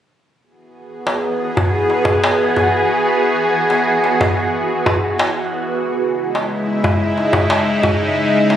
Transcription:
0.41 E3 B3 F#4 G#4
1.07 darbuka ka
1.57 darbuka dum
1.90 darbuka ka
2.05 darbuka dum
2.24 darbuka tek
2.56 darbuka dum
3.70 darbuka ka
4.04 darbuka tek
4.21 darbuka dum
4.86 darbuka dum
5.19 darbuka tek
5.68 C#3 G#3 D#4 E4
6.35 darbuka ka
6.84 darbuka dum
7.18 darbuka ka
7.33 darbuka dum
7.50 darbuka tek
7.83 darbuka dum
8.50 darbuka tek

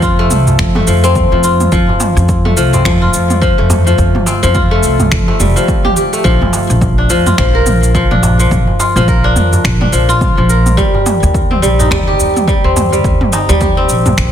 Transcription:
Already playing: F2 F3 A3 C4
0.02 F4, kick, shaker
0.19 A3
0.30 C2, mid tom, shaker
0.47 darbuka ka, darbuka dum, shaker
0.59 F2, finger snap, kick, shaker
0.75 A3, mid tom, darbuka tek
0.87 F2 F3, shaker
1.04 C4, shaker
1.16 kick, mid tom, shaker
1.32 F2 F3, darbuka tek
1.44 F4, shaker
1.60 mid tom, darbuka tek, shaker
1.72 F2 F3, kick, shaker
1.89 darbuka ka, darbuka dum
2.00 mid tom, darbuka tek, shaker
2.16 F2, darbuka tek, shaker
2.29 kick, shaker
2.45 A3, mid tom
2.57 C2 F3, shaker
2.73 C4, darbuka ka, darbuka dum, shaker
2.85 F2 F3, finger snap, kick, mid tom, darbuka tek, shaker
3.02 F4
3.13 F2, darbuka ka, shaker
3.30 mid tom, darbuka tek, shaker
3.41 F3, kick, shaker
3.58 F2 A3
3.70 mid tom, darbuka tek, darbuka dum, shaker
3.86 F3, darbuka ka, shaker
3.98 F2, kick, shaker
4.15 mid tom, darbuka dum
4.26 C4, darbuka tek, shaker
4.43 F2 F3, darbuka tek, shaker
4.55 F4, kick, mid tom, shaker
4.71 A3
4.83 C2, shaker
5.00 mid tom, darbuka ka, darbuka dum, shaker
5.12 F2, finger snap, kick, shaker
5.28 A3, darbuka tek
5.40 F1 G3, mid tom, shaker
5.56 F3, shaker
5.68 kick, shaker
5.85 D#2 G4, mid tom, darbuka tek
5.96 G4, shaker
6.13 A3, darbuka tek, shaker
6.24 A#1 F3, kick, shaker
6.42 mid tom, darbuka ka, darbuka dum
6.53 darbuka tek, shaker
6.69 A#1, darbuka tek, shaker
6.81 kick, mid tom, shaker
6.98 D4
7.10 F2 F3, shaker
7.26 F4, mid tom, darbuka ka, darbuka dum, shaker
7.38 A#1 F3, finger snap, kick, darbuka tek, shaker
7.55 A#4
7.66 A#1, mid tom, darbuka ka, shaker
7.83 darbuka tek, shaker
7.95 F3, kick, shaker
8.11 A#1 D4, mid tom
8.23 darbuka tek, darbuka dum, shaker
8.40 F3, darbuka ka, shaker
8.51 A#1, kick, mid tom, shaker
8.67 darbuka dum
8.80 F4, darbuka tek, shaker
8.96 A#1 F3, mid tom, darbuka tek, shaker
9.08 A#4, kick, shaker
9.24 D4
9.36 F2, mid tom, shaker
9.53 darbuka ka, darbuka dum, shaker
9.64 A#1, finger snap, kick, shaker
9.81 D4, mid tom, darbuka tek
9.92 A#1 F3, shaker
10.09 F4, shaker
10.21 kick, mid tom, shaker
10.37 A#1 F3, darbuka tek
10.49 A#4, shaker
10.66 mid tom, darbuka tek, shaker
10.77 D#2 G3, kick, shaker
10.94 darbuka ka, darbuka dum
11.06 mid tom, darbuka tek, shaker
11.23 D#2, darbuka tek, shaker
11.35 kick, shaker
11.51 C4, mid tom
11.62 A#1 G3, shaker
11.79 D#4, darbuka ka, darbuka dum, shaker
11.91 D#2 G3, finger snap, kick, mid tom, darbuka tek, shaker
12.07 G4
12.20 D#2, darbuka ka, shaker
12.37 mid tom, darbuka tek, shaker
12.48 G3, kick, shaker
12.64 D#2 C4
12.76 mid tom, darbuka tek, darbuka dum, shaker
12.92 G3, darbuka ka, shaker
13.04 D#2, kick, shaker
13.21 mid tom, darbuka ka, darbuka dum
13.32 D#4, darbuka tek, shaker
13.49 D#2 G3, darbuka tek, shaker
13.61 G4, kick, mid tom, shaker
13.77 C4
13.89 A#1, shaker
14.06 mid tom, darbuka ka, darbuka dum, shaker
14.17 A#1, finger snap, kick, shaker

